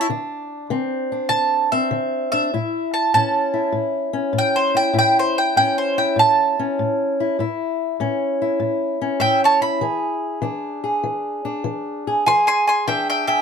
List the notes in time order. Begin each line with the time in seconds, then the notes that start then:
Already playing: A5
0.01 E4
0.09 D3 D4
0.70 D3 C4
1.12 D4
1.29 D3 A5
1.72 C4 E5
1.91 D3
2.32 D4 E5
2.54 A2 E4
2.94 A5
3.14 A2 C#4 A5
3.54 E4
3.72 A2
4.13 C#4
4.33 A2
4.38 G5
4.56 C5
4.75 E4 G5
4.93 A2 E4
4.99 G5
5.19 C5
5.38 G5
5.56 A2 C#4 G5
5.78 C5
5.98 E4 G5
6.16 A2 A5
6.59 C#4
6.79 A2
7.20 E4
7.39 A2 E4
8.00 A2 C#4
8.42 E4
8.60 A2
9.01 C#4
9.20 A2 E5 G5
9.44 C#5 A5
9.61 E4 B5
9.81 E3 G#4
10.42 E3 D4
10.84 G#4
11.03 E3
11.45 D4
11.64 E3
12.07 G#4
12.26 E3 G#4 G#5 C6
12.47 G#5 C6
12.68 G#5 C6
12.88 E3 D4 E5 G5
13.10 E5 G5
13.27 G#4 E5 G5